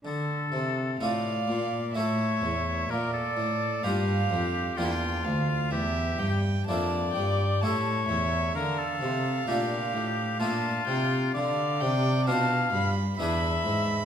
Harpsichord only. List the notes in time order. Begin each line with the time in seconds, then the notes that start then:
0.05 D3
0.52 C3
1.01 A2 A3 F4 A4
1.48 A#2
1.95 A2 A3 E4 A4
2.42 E2
2.89 A#2
3.37 A2
3.83 G2 A#3 D4 F4
4.30 F2
4.78 E2 A#3 D4 F4
5.25 D2
5.71 E2
6.19 G2
6.68 F2 A#3 D4 E4
7.16 G2
7.63 A2 A3 E4 G4
8.09 E2
8.55 D3
9.01 C3
9.48 A#2 A3 D4 F4
9.94 A2
10.40 A#2 A3 D4 F4
10.87 C3
11.35 D3
11.82 C3
12.27 B2 B3 D4 F4
12.73 G2
13.19 E2 B3 D4 G#4
13.65 G#2